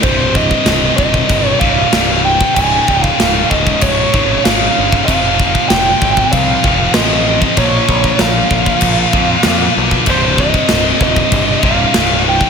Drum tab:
CC |x---x---x---x---|x---x---x---x---|x---x---x---x---|x---x---x---x---|
SD |----o-------o---|----o-------o---|----o-------o---|----o-------o---|
BD |o-oo--ooo-o----o|o-oo--ooo-o----o|o-oo--ooo-o----o|o-oo--ooo-o----o|

CC |x---x---x---x---|
SD |----o-------o---|
BD |o-oo--ooo-o----o|